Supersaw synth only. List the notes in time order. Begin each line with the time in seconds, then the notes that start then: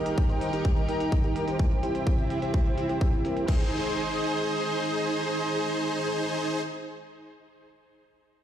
Already playing: D#4 G4 A#4
0.30 D#4 G4 C5
0.53 D#4 G4 A#4
0.65 G4
0.89 D#4 G4 A#4
1.24 D#4 G4 A#4
1.48 D#4 G4 C5
1.59 E4 G4 C5
1.83 E4 G4 C5
2.18 E4 G4 E5
2.42 E4 G4 C5
2.54 E4 G4 C5
2.78 E4 G4 E5
2.89 E4 G4 C5
3.25 E4 G4 A#4
3.48 D#4 G#4 C5